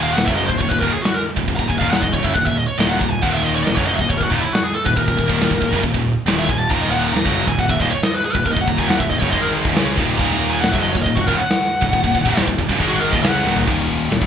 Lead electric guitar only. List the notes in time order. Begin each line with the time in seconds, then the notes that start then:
0.03 F5
0.14 F#5
0.24 E5
0.36 D#5
0.47 C5
0.58 C#5
0.69 B4
0.80 A#4
0.92 G#4
1.02 F#4
1.14 A#4
1.56 A#5
1.68 G#5
1.79 F5
1.91 F#5
2.02 D#5
2.13 C#5
2.24 E5
2.34 F#5
2.46 E5
2.57 D#5
2.67 C#5
2.79 D#5
2.89 F#5
3.00 A#5
3.11 G#5
3.22 F#5
3.33 E5
3.44 D#5
3.55 C#5
3.65 D#5
3.76 C#5
3.86 D#5
3.94 E5
4.02 D#5
4.09 C#5
4.17 A#4
4.23 F#4
4.30 D#4
4.41 E4
4.53 F#4
4.63 G#4
4.75 A4
4.85 B4
4.97 A#4
6.39 E5
6.49 G#5
6.59 A5
6.70 A#5
6.81 D#5
6.91 F#5
7.04 A#5
7.13 A#5
7.48 G#5
7.60 F#5
7.70 E5
7.80 D#5
7.91 C#5
8.03 D#5
8.14 B4
8.25 G#4
8.33 B4
8.46 A#4
8.51 D#5
8.61 F#5
8.68 A#5
8.78 G#5
8.89 F#5
8.99 E5
9.10 D#5
9.19 C#5
9.31 D#5
9.41 A#4
10.18 A#5
10.50 G#5
10.61 F#5
10.72 E5
10.81 D#5
10.92 C#5
11.02 D#5
11.15 F#4
11.27 A#4
11.37 F#5
12.89 F#4
13.00 A#4
13.12 D#5
13.21 F#5